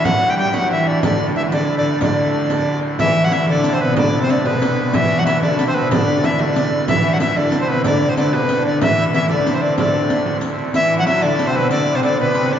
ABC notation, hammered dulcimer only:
X:1
M:6/8
L:1/16
Q:3/8=124
K:Dmix
V:1 name="Hammered dulcimer"
F3 G G2 F2 E2 D2 | D3 z E2 D3 D3 | D8- D2 z2 | E3 F E2 D3 C B,2 |
D3 C D2 B,6 | E3 F E2 D3 C B,2 | D2 D2 E2 D6 | E3 F E2 D3 C B,2 |
D3 C D2 B,4 D2 | E3 z E2 D3 C D2 | D8 z4 | E3 F E2 D3 C3 |
D3 C D2 B,2 C2 D2 |]